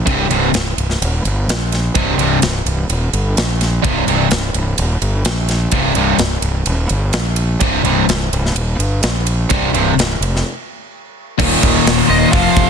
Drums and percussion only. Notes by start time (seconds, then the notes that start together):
0.07 kick, ride
0.31 ride
0.54 snare, ride
0.78 ride
0.90 snare
1.02 ride
1.25 ride
1.49 snare, ride
1.72 snare, ride
1.95 kick, ride
2.19 ride
2.42 snare, ride
2.66 ride
2.90 ride
3.13 ride
3.37 snare, ride
3.61 snare, ride
3.84 kick, ride
4.08 ride
4.31 snare, ride
4.54 ride
4.78 ride
5.02 ride
5.25 snare, ride
5.49 snare, ride
5.71 kick, ride
5.95 ride
6.19 snare, ride
6.42 ride
6.66 ride
6.89 ride
7.13 snare, ride
7.36 ride
7.61 kick, ride
7.85 ride
8.09 snare, ride
8.33 ride
8.46 snare
8.56 ride
8.80 ride
9.03 snare, ride
9.27 ride
9.50 kick, ride
9.74 ride
9.99 snare, ride
10.22 ride
10.36 snare
11.39 kick, crash
11.63 kick
11.87 snare, open hi-hat
12.33 kick, open hi-hat
12.57 kick